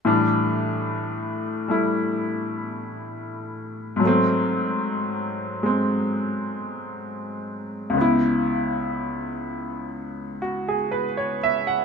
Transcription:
X:1
M:4/4
L:1/16
Q:"Swing" 1/4=61
K:A
V:1 name="Upright piano"
z16 | z16 | z8 z2 F G B c e f |]
V:2 name="Upright piano" clef=bass
[A,,E,=G,D]6 [G,A,E]8- [G,A,E]2 | [G,,F,A,^B,]6 [G,B,]8- [G,B,]2 | [C,,C,B,E]16 |]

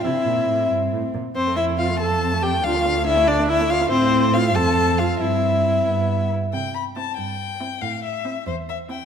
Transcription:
X:1
M:6/8
L:1/16
Q:3/8=93
K:Dm
V:1 name="Violin"
e6 z6 | c2 e2 f2 a4 g2 | f4 e2 d2 e2 f2 | [K:C] c4 f2 a4 f2 |
e8- e2 z2 | z4 E2 z4 E2 | z4 E2 z4 E2 |]
V:2 name="Viola"
E6 z6 | C2 E2 F2 A4 G2 | F4 E2 D2 E2 F2 | [K:C] C4 F2 A4 F2 |
E8- E2 z2 | z4 C2 z4 C2 | z4 C2 z4 C2 |]
V:3 name="Violin"
C8- C2 z2 | C A, C A, C A, C A, C A, C A, | D A, D A, D A, D A, D A, D A, | [K:C] C6 C6 |
C6 B,4 z2 | g2 b2 a2 g6 | f2 e4 c2 e2 g2 |]
V:4 name="Cello" clef=bass
C,2 B,,2 A,,2 G,,2 A,,2 B,,2 | F,,12 | D,,12 | [K:C] A,,6 F,,6 |
G,,6 G,,4 z2 | C,6 G,,6 | A,,6 E,,6 |]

